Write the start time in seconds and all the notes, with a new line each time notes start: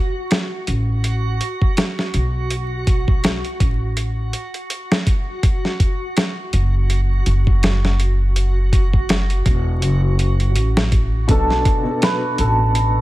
Already playing: F#4
0.31 snare, closed hi-hat
0.67 A1, closed hi-hat
1.04 closed hi-hat
1.41 closed hi-hat
1.61 kick
1.77 snare, closed hi-hat
1.99 snare
2.14 B1, closed hi-hat
2.51 closed hi-hat
2.87 kick, closed hi-hat
3.08 kick
3.24 snare, closed hi-hat
3.45 closed hi-hat
3.60 A1, kick, closed hi-hat
3.97 closed hi-hat
4.33 closed hi-hat
4.54 closed hi-hat
4.70 closed hi-hat
4.92 snare
5.07 kick, closed hi-hat
5.43 kick, closed hi-hat
5.65 snare
5.80 kick, closed hi-hat
6.17 snare, closed hi-hat
6.53 F#1, closed hi-hat
6.90 closed hi-hat
7.26 F#1, closed hi-hat
7.47 kick
7.63 snare, closed hi-hat
7.85 snare
8.00 closed hi-hat
8.36 closed hi-hat
8.73 kick, closed hi-hat
8.93 kick
9.09 snare, closed hi-hat
9.30 closed hi-hat
9.46 E1, kick, closed hi-hat
9.82 F#1, closed hi-hat
10.19 closed hi-hat
10.40 closed hi-hat
10.55 A1, closed hi-hat
10.77 snare
10.92 kick, closed hi-hat
11.28 B1 B2 B3 D4 F#4 A4, kick, closed hi-hat
11.50 snare
11.65 kick, closed hi-hat
11.83 B2 B3
11.88 D4 A4
12.02 B4, snare, closed hi-hat
12.38 A1 A4, closed hi-hat
12.75 closed hi-hat